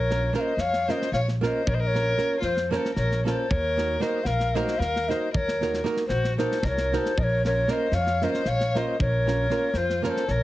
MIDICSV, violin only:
0, 0, Header, 1, 2, 480
1, 0, Start_track
1, 0, Tempo, 524017
1, 1522, Time_signature, 7, 3, 24, 8
1, 9554, End_track
2, 0, Start_track
2, 0, Title_t, "Violin"
2, 0, Program_c, 0, 40
2, 0, Note_on_c, 0, 70, 89
2, 320, Note_off_c, 0, 70, 0
2, 334, Note_on_c, 0, 72, 70
2, 546, Note_on_c, 0, 73, 81
2, 560, Note_off_c, 0, 72, 0
2, 808, Note_on_c, 0, 72, 86
2, 822, Note_off_c, 0, 73, 0
2, 1028, Note_off_c, 0, 72, 0
2, 1037, Note_on_c, 0, 73, 100
2, 1158, Note_off_c, 0, 73, 0
2, 1322, Note_on_c, 0, 72, 69
2, 1538, Note_on_c, 0, 70, 93
2, 1552, Note_off_c, 0, 72, 0
2, 1591, Note_on_c, 0, 72, 70
2, 1605, Note_off_c, 0, 70, 0
2, 1644, Note_on_c, 0, 70, 106
2, 1658, Note_off_c, 0, 72, 0
2, 2194, Note_off_c, 0, 70, 0
2, 2200, Note_on_c, 0, 65, 72
2, 2459, Note_off_c, 0, 65, 0
2, 2487, Note_on_c, 0, 69, 74
2, 2693, Note_off_c, 0, 69, 0
2, 2711, Note_on_c, 0, 70, 90
2, 2965, Note_off_c, 0, 70, 0
2, 2994, Note_on_c, 0, 69, 66
2, 3214, Note_on_c, 0, 70, 88
2, 3228, Note_off_c, 0, 69, 0
2, 3677, Note_on_c, 0, 72, 76
2, 3691, Note_off_c, 0, 70, 0
2, 3901, Note_on_c, 0, 70, 85
2, 3915, Note_off_c, 0, 72, 0
2, 4177, Note_on_c, 0, 72, 76
2, 4190, Note_off_c, 0, 70, 0
2, 4391, Note_on_c, 0, 70, 97
2, 4405, Note_off_c, 0, 72, 0
2, 4673, Note_on_c, 0, 72, 75
2, 4687, Note_off_c, 0, 70, 0
2, 4892, Note_off_c, 0, 72, 0
2, 4897, Note_on_c, 0, 70, 77
2, 5320, Note_off_c, 0, 70, 0
2, 5590, Note_on_c, 0, 66, 81
2, 5837, Note_off_c, 0, 66, 0
2, 5867, Note_on_c, 0, 69, 67
2, 6079, Note_on_c, 0, 70, 79
2, 6093, Note_off_c, 0, 69, 0
2, 6384, Note_on_c, 0, 69, 69
2, 6398, Note_off_c, 0, 70, 0
2, 6590, Note_on_c, 0, 70, 76
2, 6604, Note_off_c, 0, 69, 0
2, 6829, Note_off_c, 0, 70, 0
2, 6843, Note_on_c, 0, 70, 67
2, 7074, Note_on_c, 0, 72, 75
2, 7088, Note_off_c, 0, 70, 0
2, 7274, Note_on_c, 0, 73, 83
2, 7288, Note_off_c, 0, 72, 0
2, 7545, Note_on_c, 0, 72, 88
2, 7558, Note_off_c, 0, 73, 0
2, 7773, Note_on_c, 0, 73, 100
2, 7786, Note_off_c, 0, 72, 0
2, 8037, Note_on_c, 0, 72, 78
2, 8050, Note_off_c, 0, 73, 0
2, 8252, Note_off_c, 0, 72, 0
2, 8285, Note_on_c, 0, 70, 74
2, 8955, Note_on_c, 0, 65, 73
2, 8969, Note_off_c, 0, 70, 0
2, 9214, Note_off_c, 0, 65, 0
2, 9228, Note_on_c, 0, 69, 75
2, 9444, Note_on_c, 0, 70, 86
2, 9458, Note_off_c, 0, 69, 0
2, 9554, Note_off_c, 0, 70, 0
2, 9554, End_track
0, 0, End_of_file